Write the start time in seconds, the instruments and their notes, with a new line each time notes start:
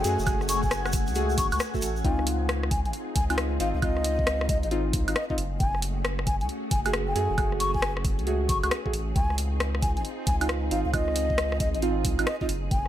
Already playing: string machine A3 C#4 F#4 G#4, ambient pad A3 F#5 G#5, flute G#5
0.04 sub bass F#2, synth stab A3 F#4 G#4, open hi-hat, shaker
0.19 sub bass F#1, shaker
0.27 synth stab A3 F#4 G#4, kick, closed hi-hat, high woodblock, shaker
0.41 cross-stick, shaker
0.49 flute C#6, open hi-hat, shaker
0.63 flute G#5, kick, shaker
0.71 cross-stick, closed hi-hat, shaker
0.85 cross-stick, high woodblock, shaker
0.93 kick, open hi-hat, shaker
1.07 sub bass C#2, closed hi-hat, shaker
1.15 synth stab A3 F#4 G#4, closed hi-hat, shaker
1.29 shaker
1.38 sub bass F#1, flute C#6, kick, open hi-hat, shaker
1.52 sub bass C#2, flute C#6, closed hi-hat, high woodblock, shaker
1.59 cross-stick, closed hi-hat, shaker
1.74 synth stab A3 F#4 A4, kick, shaker
1.82 sub bass A1, open hi-hat, shaker
1.96 shaker
2.04 sub bass C#2, synth stab C4 D#4 F4, string machine C4 D#4 F4 G#4, flute G#5, kick, closed hi-hat
2.19 cross-stick
2.27 open hi-hat
2.49 cross-stick, closed hi-hat
2.63 cross-stick
2.71 flute G#5, kick, open hi-hat
2.85 sub bass G#1, flute G#5, closed hi-hat
2.93 closed hi-hat
3.15 sub bass C#2, flute G#5, kick, open hi-hat
3.30 synth stab C4 D#4 F4, flute G#5, closed hi-hat, high woodblock
3.38 cross-stick, closed hi-hat
3.60 sub bass G#1, synth stab C4 D#4 F4, flute F5, open hi-hat
3.74 sub bass C#2, flute F5
3.82 synth stab C4 D#4 F4, flute D#5, kick, closed hi-hat, high woodblock
3.97 cross-stick
4.04 open hi-hat
4.19 kick
4.27 cross-stick, closed hi-hat
4.41 cross-stick
4.49 flute D#5, kick, open hi-hat
4.63 sub bass G#1, flute D#5, closed hi-hat
4.71 synth stab C4 D#4 F4, closed hi-hat
4.93 sub bass C#2, kick, open hi-hat
5.08 sub bass G#1, synth stab C4 D#4 F4, closed hi-hat, high woodblock
5.15 flute D#5, cross-stick, closed hi-hat
5.29 synth stab C4 D#4 F4, flute D#5, kick
5.38 sub bass F#1, string machine A3 C#4 F#4 G#4, open hi-hat
5.60 sub bass F#1, flute G#5, kick, closed hi-hat
5.75 cross-stick
5.82 open hi-hat
6.05 cross-stick, closed hi-hat
6.19 cross-stick
6.26 flute G#5, kick, open hi-hat
6.41 sub bass C#2, flute G#5, closed hi-hat
6.49 closed hi-hat
6.71 sub bass F#1, flute G#5, kick, open hi-hat
6.85 synth stab A3 F#4 G#4, flute G#5, closed hi-hat, high woodblock
6.93 cross-stick, closed hi-hat
7.08 flute G#5
7.15 sub bass F#2, synth stab A3 F#4 G#4, open hi-hat
7.30 sub bass F#1
7.38 synth stab A3 F#4 G#4, kick, closed hi-hat, high woodblock
7.52 cross-stick
7.60 flute C#6, open hi-hat
7.74 flute G#5, kick
7.82 cross-stick, closed hi-hat
7.97 cross-stick
8.05 kick, open hi-hat
8.19 sub bass C#2, closed hi-hat
8.27 synth stab A3 F#4 G#4, closed hi-hat
8.49 sub bass F#1, flute C#6, kick, open hi-hat
8.63 sub bass C#2, synth stab A3 F#4 G#4, flute C#6, closed hi-hat, high woodblock
8.71 cross-stick, closed hi-hat
8.86 synth stab A3 F#4 G#4, kick
8.93 sub bass A1, open hi-hat
9.15 sub bass C#2, string machine C4 D#4 F4, flute G#5, kick, closed hi-hat
9.30 cross-stick
9.38 open hi-hat
9.60 cross-stick, closed hi-hat
9.75 cross-stick
9.82 flute G#5, kick, open hi-hat
9.96 sub bass G#1, flute G#5, closed hi-hat
10.05 closed hi-hat
10.26 sub bass C#2, flute G#5, kick, open hi-hat
10.41 synth stab C4 D#4 F4, flute G#5, closed hi-hat, high woodblock
10.49 cross-stick, closed hi-hat
10.71 sub bass G#1, synth stab C4 D#4 F4, flute F5, open hi-hat
10.85 sub bass C#2, flute F5
10.93 synth stab C4 D#4 F4, flute D#5, kick, closed hi-hat, high woodblock
11.08 cross-stick
11.16 open hi-hat
11.30 kick
11.38 cross-stick, closed hi-hat
11.52 cross-stick
11.60 flute D#5, kick, open hi-hat
11.74 sub bass G#1, flute D#5, closed hi-hat
11.82 synth stab C4 D#4 F4, closed hi-hat
12.05 sub bass C#2, kick, open hi-hat
12.19 sub bass G#1, synth stab C4 D#4 F4, closed hi-hat, high woodblock
12.27 flute D#5, cross-stick, closed hi-hat
12.41 synth stab C4 D#4 F4, flute D#5, kick
12.49 sub bass F#1, string machine A3 C#4 F#4, open hi-hat
12.71 sub bass F#1, flute G#5, kick, closed hi-hat